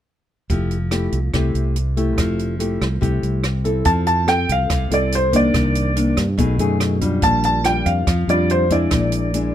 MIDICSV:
0, 0, Header, 1, 5, 480
1, 0, Start_track
1, 0, Key_signature, -1, "major"
1, 0, Tempo, 420757
1, 561, Time_signature, 4, 2, 24, 8
1, 10891, End_track
2, 0, Start_track
2, 0, Title_t, "Grand piano"
2, 0, Program_c, 0, 0
2, 4399, Note_on_c, 0, 81, 89
2, 4456, Note_off_c, 0, 81, 0
2, 4643, Note_on_c, 0, 81, 82
2, 4888, Note_off_c, 0, 81, 0
2, 4889, Note_on_c, 0, 79, 90
2, 5132, Note_off_c, 0, 79, 0
2, 5157, Note_on_c, 0, 77, 77
2, 5631, Note_on_c, 0, 74, 68
2, 5632, Note_off_c, 0, 77, 0
2, 5862, Note_off_c, 0, 74, 0
2, 5878, Note_on_c, 0, 72, 73
2, 6106, Note_off_c, 0, 72, 0
2, 6114, Note_on_c, 0, 74, 77
2, 7012, Note_off_c, 0, 74, 0
2, 8253, Note_on_c, 0, 81, 95
2, 8481, Note_off_c, 0, 81, 0
2, 8498, Note_on_c, 0, 81, 87
2, 8732, Note_on_c, 0, 79, 83
2, 8737, Note_off_c, 0, 81, 0
2, 8966, Note_on_c, 0, 77, 72
2, 8974, Note_off_c, 0, 79, 0
2, 9459, Note_off_c, 0, 77, 0
2, 9467, Note_on_c, 0, 74, 71
2, 9702, Note_off_c, 0, 74, 0
2, 9708, Note_on_c, 0, 72, 74
2, 9920, Note_off_c, 0, 72, 0
2, 9952, Note_on_c, 0, 74, 60
2, 10853, Note_off_c, 0, 74, 0
2, 10891, End_track
3, 0, Start_track
3, 0, Title_t, "Nylon-string guitar"
3, 0, Program_c, 1, 24
3, 566, Note_on_c, 1, 53, 47
3, 572, Note_on_c, 1, 57, 43
3, 575, Note_on_c, 1, 67, 46
3, 576, Note_on_c, 1, 64, 44
3, 875, Note_off_c, 1, 57, 0
3, 875, Note_off_c, 1, 64, 0
3, 877, Note_off_c, 1, 67, 0
3, 1038, Note_on_c, 1, 57, 43
3, 1046, Note_on_c, 1, 64, 45
3, 1051, Note_on_c, 1, 67, 50
3, 1348, Note_off_c, 1, 57, 0
3, 1353, Note_off_c, 1, 64, 0
3, 1354, Note_off_c, 1, 67, 0
3, 1500, Note_off_c, 1, 53, 0
3, 1529, Note_on_c, 1, 48, 43
3, 1533, Note_on_c, 1, 57, 45
3, 1539, Note_on_c, 1, 64, 42
3, 1543, Note_on_c, 1, 67, 50
3, 2004, Note_off_c, 1, 57, 0
3, 2006, Note_off_c, 1, 64, 0
3, 2009, Note_off_c, 1, 67, 0
3, 2244, Note_on_c, 1, 57, 52
3, 2249, Note_on_c, 1, 64, 55
3, 2256, Note_on_c, 1, 67, 53
3, 2460, Note_off_c, 1, 48, 0
3, 2499, Note_on_c, 1, 53, 47
3, 2924, Note_off_c, 1, 57, 0
3, 2926, Note_off_c, 1, 64, 0
3, 2929, Note_off_c, 1, 67, 0
3, 2959, Note_on_c, 1, 57, 44
3, 2963, Note_on_c, 1, 64, 45
3, 2973, Note_on_c, 1, 67, 52
3, 3269, Note_off_c, 1, 57, 0
3, 3271, Note_off_c, 1, 64, 0
3, 3276, Note_off_c, 1, 67, 0
3, 3426, Note_off_c, 1, 53, 0
3, 3433, Note_on_c, 1, 48, 46
3, 3435, Note_on_c, 1, 57, 44
3, 3441, Note_on_c, 1, 67, 51
3, 3442, Note_on_c, 1, 64, 53
3, 3913, Note_off_c, 1, 57, 0
3, 3917, Note_off_c, 1, 67, 0
3, 3918, Note_off_c, 1, 64, 0
3, 4155, Note_on_c, 1, 60, 52
3, 4158, Note_on_c, 1, 64, 51
3, 4164, Note_on_c, 1, 69, 55
3, 4373, Note_off_c, 1, 48, 0
3, 4402, Note_on_c, 1, 53, 45
3, 4840, Note_off_c, 1, 60, 0
3, 4840, Note_off_c, 1, 64, 0
3, 4844, Note_off_c, 1, 69, 0
3, 4871, Note_on_c, 1, 60, 42
3, 4877, Note_on_c, 1, 69, 46
3, 5337, Note_off_c, 1, 53, 0
3, 5362, Note_on_c, 1, 48, 45
3, 5557, Note_off_c, 1, 60, 0
3, 5560, Note_off_c, 1, 69, 0
3, 5598, Note_on_c, 1, 60, 50
3, 5603, Note_on_c, 1, 64, 51
3, 5611, Note_on_c, 1, 69, 57
3, 6042, Note_off_c, 1, 64, 0
3, 6043, Note_off_c, 1, 60, 0
3, 6044, Note_off_c, 1, 69, 0
3, 6067, Note_on_c, 1, 51, 53
3, 6075, Note_on_c, 1, 58, 50
3, 6080, Note_on_c, 1, 62, 55
3, 6297, Note_off_c, 1, 48, 0
3, 6318, Note_on_c, 1, 48, 50
3, 6756, Note_off_c, 1, 51, 0
3, 6757, Note_off_c, 1, 58, 0
3, 6762, Note_off_c, 1, 62, 0
3, 6793, Note_on_c, 1, 51, 47
3, 6799, Note_on_c, 1, 58, 44
3, 6803, Note_on_c, 1, 62, 52
3, 7120, Note_off_c, 1, 51, 0
3, 7123, Note_off_c, 1, 58, 0
3, 7123, Note_off_c, 1, 62, 0
3, 7255, Note_off_c, 1, 48, 0
3, 7273, Note_on_c, 1, 47, 52
3, 7281, Note_on_c, 1, 57, 50
3, 7287, Note_on_c, 1, 63, 49
3, 7293, Note_on_c, 1, 68, 51
3, 7483, Note_off_c, 1, 57, 0
3, 7484, Note_off_c, 1, 63, 0
3, 7489, Note_off_c, 1, 68, 0
3, 7521, Note_on_c, 1, 57, 54
3, 7528, Note_on_c, 1, 63, 54
3, 7531, Note_on_c, 1, 68, 61
3, 7963, Note_off_c, 1, 57, 0
3, 7967, Note_off_c, 1, 63, 0
3, 7967, Note_off_c, 1, 68, 0
3, 8000, Note_on_c, 1, 55, 60
3, 8007, Note_on_c, 1, 62, 55
3, 8016, Note_on_c, 1, 65, 58
3, 8214, Note_off_c, 1, 47, 0
3, 8239, Note_on_c, 1, 46, 49
3, 8683, Note_off_c, 1, 55, 0
3, 8687, Note_off_c, 1, 62, 0
3, 8689, Note_off_c, 1, 65, 0
3, 8726, Note_on_c, 1, 55, 47
3, 8726, Note_on_c, 1, 62, 44
3, 8728, Note_on_c, 1, 65, 47
3, 9177, Note_off_c, 1, 46, 0
3, 9201, Note_off_c, 1, 62, 0
3, 9201, Note_off_c, 1, 65, 0
3, 9202, Note_off_c, 1, 55, 0
3, 9208, Note_on_c, 1, 53, 52
3, 9452, Note_on_c, 1, 55, 52
3, 9459, Note_on_c, 1, 62, 53
3, 9463, Note_on_c, 1, 65, 54
3, 9890, Note_off_c, 1, 55, 0
3, 9891, Note_off_c, 1, 62, 0
3, 9895, Note_off_c, 1, 65, 0
3, 9929, Note_on_c, 1, 56, 57
3, 9936, Note_on_c, 1, 62, 54
3, 9942, Note_on_c, 1, 64, 59
3, 10142, Note_off_c, 1, 53, 0
3, 10180, Note_on_c, 1, 46, 48
3, 10609, Note_off_c, 1, 56, 0
3, 10612, Note_off_c, 1, 62, 0
3, 10615, Note_off_c, 1, 64, 0
3, 10655, Note_on_c, 1, 56, 46
3, 10663, Note_on_c, 1, 62, 47
3, 10668, Note_on_c, 1, 64, 50
3, 10891, Note_off_c, 1, 46, 0
3, 10891, Note_off_c, 1, 56, 0
3, 10891, Note_off_c, 1, 62, 0
3, 10891, Note_off_c, 1, 64, 0
3, 10891, End_track
4, 0, Start_track
4, 0, Title_t, "Fingered electric bass"
4, 0, Program_c, 2, 33
4, 571, Note_on_c, 2, 29, 71
4, 1240, Note_off_c, 2, 29, 0
4, 1284, Note_on_c, 2, 36, 68
4, 1506, Note_off_c, 2, 36, 0
4, 1527, Note_on_c, 2, 36, 71
4, 1747, Note_off_c, 2, 36, 0
4, 1760, Note_on_c, 2, 36, 66
4, 2489, Note_off_c, 2, 36, 0
4, 2489, Note_on_c, 2, 29, 75
4, 3159, Note_off_c, 2, 29, 0
4, 3210, Note_on_c, 2, 36, 79
4, 3429, Note_off_c, 2, 36, 0
4, 3447, Note_on_c, 2, 36, 72
4, 3667, Note_off_c, 2, 36, 0
4, 3684, Note_on_c, 2, 36, 68
4, 4356, Note_off_c, 2, 36, 0
4, 4400, Note_on_c, 2, 41, 77
4, 5074, Note_off_c, 2, 41, 0
4, 5123, Note_on_c, 2, 36, 72
4, 5345, Note_off_c, 2, 36, 0
4, 5365, Note_on_c, 2, 36, 78
4, 5586, Note_off_c, 2, 36, 0
4, 5591, Note_on_c, 2, 36, 67
4, 6270, Note_off_c, 2, 36, 0
4, 6325, Note_on_c, 2, 36, 80
4, 6997, Note_off_c, 2, 36, 0
4, 7042, Note_on_c, 2, 43, 79
4, 7265, Note_off_c, 2, 43, 0
4, 7287, Note_on_c, 2, 35, 78
4, 7505, Note_off_c, 2, 35, 0
4, 7511, Note_on_c, 2, 42, 77
4, 8191, Note_off_c, 2, 42, 0
4, 8243, Note_on_c, 2, 34, 79
4, 8917, Note_off_c, 2, 34, 0
4, 8964, Note_on_c, 2, 41, 86
4, 9187, Note_off_c, 2, 41, 0
4, 9207, Note_on_c, 2, 41, 77
4, 9428, Note_off_c, 2, 41, 0
4, 9440, Note_on_c, 2, 41, 71
4, 10117, Note_off_c, 2, 41, 0
4, 10176, Note_on_c, 2, 34, 73
4, 10845, Note_off_c, 2, 34, 0
4, 10891, End_track
5, 0, Start_track
5, 0, Title_t, "Drums"
5, 568, Note_on_c, 9, 36, 48
5, 568, Note_on_c, 9, 42, 34
5, 682, Note_off_c, 9, 36, 0
5, 682, Note_off_c, 9, 42, 0
5, 807, Note_on_c, 9, 42, 24
5, 921, Note_off_c, 9, 42, 0
5, 1041, Note_on_c, 9, 37, 51
5, 1041, Note_on_c, 9, 42, 38
5, 1155, Note_off_c, 9, 37, 0
5, 1155, Note_off_c, 9, 42, 0
5, 1281, Note_on_c, 9, 42, 24
5, 1395, Note_off_c, 9, 42, 0
5, 1524, Note_on_c, 9, 37, 52
5, 1524, Note_on_c, 9, 42, 35
5, 1526, Note_on_c, 9, 36, 47
5, 1638, Note_off_c, 9, 37, 0
5, 1638, Note_off_c, 9, 42, 0
5, 1640, Note_off_c, 9, 36, 0
5, 1766, Note_on_c, 9, 42, 23
5, 1880, Note_off_c, 9, 42, 0
5, 2006, Note_on_c, 9, 42, 35
5, 2120, Note_off_c, 9, 42, 0
5, 2247, Note_on_c, 9, 42, 23
5, 2362, Note_off_c, 9, 42, 0
5, 2485, Note_on_c, 9, 37, 51
5, 2485, Note_on_c, 9, 42, 40
5, 2486, Note_on_c, 9, 36, 52
5, 2599, Note_off_c, 9, 37, 0
5, 2599, Note_off_c, 9, 42, 0
5, 2600, Note_off_c, 9, 36, 0
5, 2729, Note_on_c, 9, 42, 24
5, 2843, Note_off_c, 9, 42, 0
5, 2966, Note_on_c, 9, 42, 40
5, 3080, Note_off_c, 9, 42, 0
5, 3212, Note_on_c, 9, 37, 50
5, 3212, Note_on_c, 9, 42, 23
5, 3326, Note_off_c, 9, 37, 0
5, 3326, Note_off_c, 9, 42, 0
5, 3448, Note_on_c, 9, 36, 47
5, 3452, Note_on_c, 9, 42, 33
5, 3562, Note_off_c, 9, 36, 0
5, 3566, Note_off_c, 9, 42, 0
5, 3685, Note_on_c, 9, 42, 23
5, 3800, Note_off_c, 9, 42, 0
5, 3920, Note_on_c, 9, 37, 53
5, 3920, Note_on_c, 9, 42, 36
5, 4034, Note_off_c, 9, 37, 0
5, 4034, Note_off_c, 9, 42, 0
5, 4162, Note_on_c, 9, 42, 24
5, 4276, Note_off_c, 9, 42, 0
5, 4391, Note_on_c, 9, 42, 52
5, 4399, Note_on_c, 9, 36, 52
5, 4505, Note_off_c, 9, 42, 0
5, 4513, Note_off_c, 9, 36, 0
5, 4637, Note_on_c, 9, 42, 38
5, 4751, Note_off_c, 9, 42, 0
5, 4881, Note_on_c, 9, 37, 58
5, 4881, Note_on_c, 9, 42, 42
5, 4995, Note_off_c, 9, 37, 0
5, 4995, Note_off_c, 9, 42, 0
5, 5122, Note_on_c, 9, 36, 22
5, 5123, Note_on_c, 9, 42, 40
5, 5236, Note_off_c, 9, 36, 0
5, 5238, Note_off_c, 9, 42, 0
5, 5359, Note_on_c, 9, 37, 49
5, 5359, Note_on_c, 9, 42, 52
5, 5362, Note_on_c, 9, 36, 49
5, 5473, Note_off_c, 9, 37, 0
5, 5473, Note_off_c, 9, 42, 0
5, 5476, Note_off_c, 9, 36, 0
5, 5604, Note_on_c, 9, 42, 39
5, 5718, Note_off_c, 9, 42, 0
5, 5844, Note_on_c, 9, 42, 43
5, 5958, Note_off_c, 9, 42, 0
5, 6081, Note_on_c, 9, 42, 42
5, 6082, Note_on_c, 9, 36, 23
5, 6195, Note_off_c, 9, 42, 0
5, 6196, Note_off_c, 9, 36, 0
5, 6322, Note_on_c, 9, 36, 55
5, 6322, Note_on_c, 9, 37, 51
5, 6322, Note_on_c, 9, 42, 49
5, 6436, Note_off_c, 9, 37, 0
5, 6436, Note_off_c, 9, 42, 0
5, 6437, Note_off_c, 9, 36, 0
5, 6561, Note_on_c, 9, 42, 38
5, 6675, Note_off_c, 9, 42, 0
5, 6805, Note_on_c, 9, 42, 42
5, 6919, Note_off_c, 9, 42, 0
5, 7040, Note_on_c, 9, 37, 53
5, 7040, Note_on_c, 9, 42, 36
5, 7043, Note_on_c, 9, 36, 23
5, 7154, Note_off_c, 9, 37, 0
5, 7154, Note_off_c, 9, 42, 0
5, 7157, Note_off_c, 9, 36, 0
5, 7283, Note_on_c, 9, 36, 51
5, 7283, Note_on_c, 9, 42, 46
5, 7397, Note_off_c, 9, 36, 0
5, 7397, Note_off_c, 9, 42, 0
5, 7519, Note_on_c, 9, 42, 37
5, 7633, Note_off_c, 9, 42, 0
5, 7762, Note_on_c, 9, 37, 54
5, 7762, Note_on_c, 9, 42, 38
5, 7876, Note_off_c, 9, 37, 0
5, 7876, Note_off_c, 9, 42, 0
5, 8000, Note_on_c, 9, 42, 40
5, 8002, Note_on_c, 9, 36, 22
5, 8114, Note_off_c, 9, 42, 0
5, 8116, Note_off_c, 9, 36, 0
5, 8236, Note_on_c, 9, 42, 53
5, 8241, Note_on_c, 9, 36, 52
5, 8350, Note_off_c, 9, 42, 0
5, 8355, Note_off_c, 9, 36, 0
5, 8481, Note_on_c, 9, 42, 41
5, 8595, Note_off_c, 9, 42, 0
5, 8720, Note_on_c, 9, 37, 54
5, 8720, Note_on_c, 9, 42, 42
5, 8834, Note_off_c, 9, 37, 0
5, 8834, Note_off_c, 9, 42, 0
5, 8964, Note_on_c, 9, 36, 22
5, 8965, Note_on_c, 9, 42, 42
5, 9078, Note_off_c, 9, 36, 0
5, 9079, Note_off_c, 9, 42, 0
5, 9208, Note_on_c, 9, 36, 51
5, 9208, Note_on_c, 9, 37, 52
5, 9208, Note_on_c, 9, 42, 48
5, 9322, Note_off_c, 9, 36, 0
5, 9322, Note_off_c, 9, 37, 0
5, 9322, Note_off_c, 9, 42, 0
5, 9456, Note_on_c, 9, 42, 40
5, 9570, Note_off_c, 9, 42, 0
5, 9692, Note_on_c, 9, 42, 41
5, 9806, Note_off_c, 9, 42, 0
5, 9929, Note_on_c, 9, 36, 22
5, 9929, Note_on_c, 9, 42, 43
5, 10043, Note_off_c, 9, 36, 0
5, 10043, Note_off_c, 9, 42, 0
5, 10164, Note_on_c, 9, 37, 52
5, 10164, Note_on_c, 9, 42, 57
5, 10171, Note_on_c, 9, 36, 52
5, 10278, Note_off_c, 9, 37, 0
5, 10278, Note_off_c, 9, 42, 0
5, 10285, Note_off_c, 9, 36, 0
5, 10402, Note_on_c, 9, 42, 41
5, 10516, Note_off_c, 9, 42, 0
5, 10653, Note_on_c, 9, 42, 41
5, 10767, Note_off_c, 9, 42, 0
5, 10891, End_track
0, 0, End_of_file